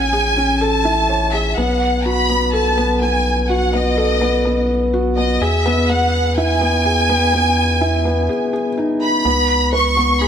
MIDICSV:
0, 0, Header, 1, 4, 480
1, 0, Start_track
1, 0, Tempo, 480000
1, 1573, Time_signature, 4, 2, 24, 8
1, 10278, End_track
2, 0, Start_track
2, 0, Title_t, "Violin section"
2, 0, Program_c, 0, 48
2, 0, Note_on_c, 0, 80, 99
2, 604, Note_on_c, 0, 81, 101
2, 611, Note_off_c, 0, 80, 0
2, 1328, Note_off_c, 0, 81, 0
2, 1329, Note_on_c, 0, 76, 85
2, 1567, Note_on_c, 0, 78, 86
2, 1571, Note_off_c, 0, 76, 0
2, 2046, Note_on_c, 0, 83, 98
2, 2050, Note_off_c, 0, 78, 0
2, 2530, Note_off_c, 0, 83, 0
2, 2532, Note_on_c, 0, 81, 88
2, 2978, Note_off_c, 0, 81, 0
2, 3008, Note_on_c, 0, 80, 90
2, 3401, Note_off_c, 0, 80, 0
2, 3435, Note_on_c, 0, 80, 62
2, 3493, Note_on_c, 0, 78, 83
2, 3494, Note_off_c, 0, 80, 0
2, 3731, Note_on_c, 0, 75, 84
2, 3733, Note_off_c, 0, 78, 0
2, 4692, Note_off_c, 0, 75, 0
2, 5171, Note_on_c, 0, 75, 86
2, 5395, Note_off_c, 0, 75, 0
2, 5411, Note_on_c, 0, 76, 89
2, 5882, Note_on_c, 0, 78, 101
2, 5892, Note_off_c, 0, 76, 0
2, 6360, Note_on_c, 0, 80, 106
2, 6367, Note_off_c, 0, 78, 0
2, 8766, Note_off_c, 0, 80, 0
2, 9016, Note_on_c, 0, 83, 107
2, 9694, Note_off_c, 0, 83, 0
2, 9738, Note_on_c, 0, 85, 104
2, 10215, Note_off_c, 0, 85, 0
2, 10215, Note_on_c, 0, 83, 107
2, 10278, Note_off_c, 0, 83, 0
2, 10278, End_track
3, 0, Start_track
3, 0, Title_t, "Felt piano"
3, 0, Program_c, 1, 0
3, 0, Control_c, 1, 64, 127
3, 0, Note_on_c, 1, 61, 75
3, 0, Note_on_c, 1, 68, 70
3, 0, Note_on_c, 1, 69, 69
3, 128, Note_off_c, 1, 68, 0
3, 128, Note_on_c, 1, 68, 74
3, 358, Note_off_c, 1, 68, 0
3, 369, Note_off_c, 1, 61, 0
3, 369, Note_on_c, 1, 61, 70
3, 599, Note_off_c, 1, 61, 0
3, 611, Note_off_c, 1, 69, 0
3, 611, Note_on_c, 1, 69, 75
3, 840, Note_off_c, 1, 69, 0
3, 850, Note_on_c, 1, 64, 86
3, 1079, Note_off_c, 1, 64, 0
3, 1093, Note_on_c, 1, 73, 64
3, 1230, Note_off_c, 1, 73, 0
3, 1331, Note_on_c, 1, 68, 68
3, 1468, Note_off_c, 1, 68, 0
3, 1574, Note_on_c, 1, 59, 77
3, 1587, Control_c, 1, 64, 0
3, 1771, Control_c, 1, 64, 127
3, 1802, Note_off_c, 1, 59, 0
3, 2055, Note_on_c, 1, 66, 70
3, 2282, Note_off_c, 1, 66, 0
3, 2295, Note_on_c, 1, 59, 68
3, 2522, Note_off_c, 1, 59, 0
3, 2533, Note_on_c, 1, 69, 77
3, 2761, Note_off_c, 1, 69, 0
3, 2774, Note_on_c, 1, 59, 87
3, 3002, Note_off_c, 1, 59, 0
3, 3017, Note_on_c, 1, 59, 67
3, 3243, Note_off_c, 1, 59, 0
3, 3496, Note_on_c, 1, 66, 77
3, 3722, Note_off_c, 1, 66, 0
3, 3734, Note_on_c, 1, 59, 69
3, 3961, Note_off_c, 1, 59, 0
3, 3972, Note_on_c, 1, 69, 73
3, 4200, Note_off_c, 1, 69, 0
3, 4213, Note_on_c, 1, 59, 88
3, 4439, Note_off_c, 1, 59, 0
3, 4454, Note_on_c, 1, 59, 75
3, 4681, Note_off_c, 1, 59, 0
3, 4935, Note_on_c, 1, 66, 66
3, 5162, Note_off_c, 1, 66, 0
3, 5174, Note_on_c, 1, 59, 70
3, 5401, Note_off_c, 1, 59, 0
3, 5417, Note_on_c, 1, 68, 80
3, 5425, Control_c, 1, 64, 0
3, 5624, Control_c, 1, 64, 127
3, 5643, Note_off_c, 1, 68, 0
3, 5656, Note_on_c, 1, 59, 91
3, 5880, Note_off_c, 1, 59, 0
3, 5895, Note_on_c, 1, 59, 76
3, 6122, Note_off_c, 1, 59, 0
3, 6375, Note_on_c, 1, 64, 78
3, 6602, Note_off_c, 1, 64, 0
3, 6613, Note_on_c, 1, 59, 73
3, 6841, Note_off_c, 1, 59, 0
3, 6853, Note_on_c, 1, 68, 70
3, 7081, Note_off_c, 1, 68, 0
3, 7094, Note_on_c, 1, 59, 93
3, 7319, Note_off_c, 1, 59, 0
3, 7334, Note_on_c, 1, 59, 74
3, 7561, Note_off_c, 1, 59, 0
3, 7812, Note_on_c, 1, 64, 73
3, 8040, Note_off_c, 1, 64, 0
3, 8053, Note_on_c, 1, 59, 69
3, 8281, Note_off_c, 1, 59, 0
3, 8291, Note_on_c, 1, 68, 69
3, 8517, Note_off_c, 1, 68, 0
3, 8532, Note_on_c, 1, 68, 67
3, 8669, Note_off_c, 1, 68, 0
3, 8774, Note_on_c, 1, 63, 67
3, 9001, Note_off_c, 1, 63, 0
3, 9252, Note_on_c, 1, 59, 78
3, 9264, Control_c, 1, 64, 0
3, 9426, Control_c, 1, 64, 127
3, 9480, Note_off_c, 1, 59, 0
3, 9728, Note_on_c, 1, 71, 73
3, 9958, Note_off_c, 1, 71, 0
3, 9970, Note_on_c, 1, 59, 69
3, 10199, Note_off_c, 1, 59, 0
3, 10213, Note_on_c, 1, 68, 75
3, 10278, Note_off_c, 1, 68, 0
3, 10278, End_track
4, 0, Start_track
4, 0, Title_t, "Analog synth bass"
4, 0, Program_c, 2, 38
4, 0, Note_on_c, 2, 33, 84
4, 1550, Note_off_c, 2, 33, 0
4, 1575, Note_on_c, 2, 35, 79
4, 5390, Note_off_c, 2, 35, 0
4, 5412, Note_on_c, 2, 40, 81
4, 8292, Note_off_c, 2, 40, 0
4, 9252, Note_on_c, 2, 37, 85
4, 10278, Note_off_c, 2, 37, 0
4, 10278, End_track
0, 0, End_of_file